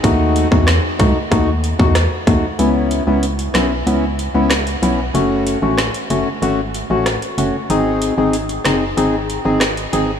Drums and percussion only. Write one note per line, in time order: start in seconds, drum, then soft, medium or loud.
0.04 kick loud
0.04 closed hi-hat medium
0.36 closed hi-hat medium
0.52 kick loud
0.67 cross-stick medium
0.67 snare loud
0.67 closed hi-hat medium
1.00 kick loud
1.00 closed hi-hat medium
1.32 kick loud
1.32 closed hi-hat medium
1.64 closed hi-hat medium
1.79 kick loud
1.95 cross-stick medium
1.95 snare medium
1.95 closed hi-hat medium
2.27 kick loud
2.27 closed hi-hat medium
2.59 closed hi-hat medium
2.91 closed hi-hat medium
3.23 closed hi-hat medium
3.39 closed hi-hat medium
3.54 cross-stick medium
3.54 snare loud
3.54 closed hi-hat medium
3.87 closed hi-hat medium
4.19 closed hi-hat medium
4.50 cross-stick medium
4.50 snare loud
4.50 closed hi-hat medium
4.67 closed hi-hat soft
4.83 closed hi-hat medium
5.15 closed hi-hat medium
5.47 closed hi-hat medium
5.78 cross-stick medium
5.78 snare loud
5.78 closed hi-hat medium
5.94 closed hi-hat medium
6.10 closed hi-hat medium
6.43 closed hi-hat medium
6.74 closed hi-hat medium
7.06 cross-stick medium
7.06 snare medium
7.06 closed hi-hat medium
7.22 closed hi-hat soft
7.38 closed hi-hat medium
7.70 closed hi-hat medium
8.02 closed hi-hat medium
8.33 closed hi-hat medium
8.49 closed hi-hat medium
8.65 cross-stick medium
8.65 snare loud
8.65 closed hi-hat medium
8.98 closed hi-hat medium
9.30 closed hi-hat medium
9.60 cross-stick medium
9.60 snare loud
9.60 closed hi-hat medium
9.77 closed hi-hat soft
9.93 closed hi-hat medium